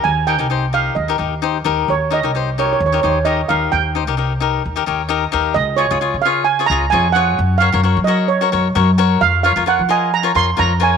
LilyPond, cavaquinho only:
\new Staff \with { instrumentName = "Cavaquinho" } { \time 4/4 \key ees \dorian \tempo 4 = 131 << { r1 | r1 | r2 r8 des''8 ees''8 f''8 | r1 |
r1 | r1 | } \\ { r8 <ees' g' bes'>16 <ees' g' bes'>16 <ees' g' c''>16 r16 <ees' g' bes'>8 r16 <ees' g' bes'>16 <ees' g' bes'>16 r16 <ees' g' c''>16 r16 <ees' g' bes'>8 | r8 <ees' g' bes'>16 <ees' g' bes'>16 <ees' g' c''>16 r16 <ees' g' bes'>8 r16 <ees' g' bes'>16 <ees' g' c''>16 r16 <ees' g' bes'>16 r16 <ees' g' bes'>8 | r8 <ees' g' c''>16 <ees' g' bes'>16 <ees' g' bes'>16 r16 <ees' g' bes'>8 r16 <ees' g' bes'>16 <ees' g' bes'>16 r16 <ees' g' bes'>16 r16 <ees' g' bes'>8 | r8 <f' aes' des''>16 <f' aes' des''>16 <f' aes' des''>16 r16 <f' aes' des''>8 r16 <f' aes' des''>16 <f' aes' des''>16 r16 <f' aes' des''>16 r16 <f' aes' des''>8 |
r8 <ges' bes' des''>16 <ges' bes' des''>16 <ges' bes' des''>16 r16 <ges' bes' des''>8 r16 <ges' bes' des''>16 <ges' bes' des''>16 r16 <ges' bes' des''>16 r16 <ges' bes' des''>8 | r8 <f' bes' des''>16 <f' bes' des''>16 <f' bes' des''>16 r16 <f' bes' ees''>8 r16 <f' bes' des''>16 <f' bes' des''>16 r16 <f' bes' des''>16 r16 <f' bes' des''>8 | } >> }